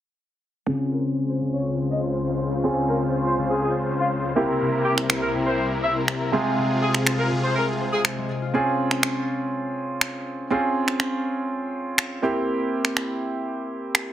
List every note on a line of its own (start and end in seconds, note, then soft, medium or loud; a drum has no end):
0.66 4.32 C#2 medium
0.66 4.32 C#3 medium
0.66 1.40 C#3 medium
0.66 2.60 C4 medium
0.66 2.60 C#4 medium
0.66 4.32 F4 medium
0.66 2.60 F4 medium
0.66 2.60 G#4 medium
0.92 1.01 A#4 medium
1.17 1.90 C#5 medium
1.29 1.38 C5 medium
1.41 2.63 C#3 medium
1.53 1.72 C#5 medium
1.90 2.09 C#5 medium
1.90 2.00 D#5 medium
2.03 2.70 C6 medium
2.27 2.70 C4 medium
2.52 4.54 F4 medium
2.64 3.37 C#3 medium
2.64 4.32 C4 medium
2.64 4.33 C#4 medium
2.64 4.33 F4 medium
2.64 4.33 G#4 medium
2.89 2.98 A#4 medium
3.13 3.87 C#5 medium
3.25 3.35 C5 medium
3.38 4.41 C#3 medium
3.50 3.59 G#4 medium
3.62 3.72 G#4 medium
3.87 4.05 C#5 medium
3.99 4.09 F4 medium
3.99 5.30 C6 medium
4.24 7.24 C4 medium
4.35 8.50 C2 medium
4.35 6.31 C3 medium
4.35 6.29 A#3 medium
4.35 6.29 C4 medium
4.35 6.31 E4 medium
4.35 6.29 E4 medium
4.35 6.29 G4 medium
4.35 6.31 A#4 medium
4.48 6.51 E4 medium
4.61 5.33 C3 medium
4.85 4.94 G4 medium
4.98 finger snap medium
5.10 5.83 C5 medium
5.10 finger snap loud
5.22 5.31 A#4 medium
5.35 6.38 C3 medium
5.46 5.65 C5 medium
5.83 7.06 C5 medium
5.83 5.93 E5 medium
5.96 7.36 A#5 medium
6.08 finger snap loud
6.21 9.42 A#3 medium
6.32 8.25 C3 medium
6.32 8.52 C3 medium
6.32 8.25 G#3 medium
6.32 8.26 C4 medium
6.32 8.26 F4 medium
6.32 8.52 F4 medium
6.32 8.52 G#4 medium
6.32 8.26 G#4 medium
6.45 8.42 F4 medium
6.58 7.30 C3 medium
6.82 6.91 G#4 medium
6.95 finger snap medium
7.07 7.80 C5 medium
7.07 finger snap medium
7.19 7.28 A#4 medium
7.31 8.59 C3 medium
7.44 7.53 C5 medium
7.55 7.65 A#4 medium
7.80 9.78 C5 medium
7.92 8.02 G#4 medium
7.92 9.43 G#5 medium
8.05 finger snap loud
8.18 8.59 G#3 medium
8.42 10.94 F4 medium
8.54 10.47 C4 medium
8.54 10.47 C#4 medium
8.54 10.47 F4 medium
8.54 10.47 G#4 medium
8.91 finger snap medium
9.03 finger snap medium
10.01 finger snap loud
10.50 12.19 C4 medium
10.50 12.19 C#4 medium
10.50 12.20 F4 medium
10.50 12.20 G#4 medium
10.88 finger snap medium
11.00 finger snap medium
11.98 finger snap loud
12.22 14.13 A#3 medium
12.22 14.13 C4 medium
12.22 14.13 E4 medium
12.22 14.13 G4 medium
12.85 finger snap medium
12.97 finger snap loud
13.95 finger snap loud